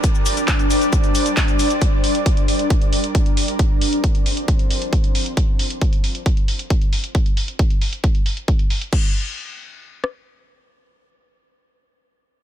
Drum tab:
CC |----------------|----------------|----------------|----------------|
HH |x-oxxxoxxxoxxxox|x-oxxxoxxxoxxxox|x-oxxxoxxxoxxxox|x-oxxxoxxxoxxxox|
SH |xxxxxxxxxxxxxxxx|----------------|----------------|----------------|
CP |----x-------x---|----------------|----------------|----------------|
SD |----------------|----------------|----------------|----------------|
BD |o---o---o---o---|o---o---o---o---|o---o---o---o---|o---o---o---o---|

CC |----------------|x---------------|----------------|
HH |xxoxxxoxxxoxxxox|----------------|----------------|
SH |----------------|----------------|----------------|
CP |----------------|----------------|----------------|
SD |----------------|----------r-----|----------------|
BD |o---o---o---o---|o---------------|----------------|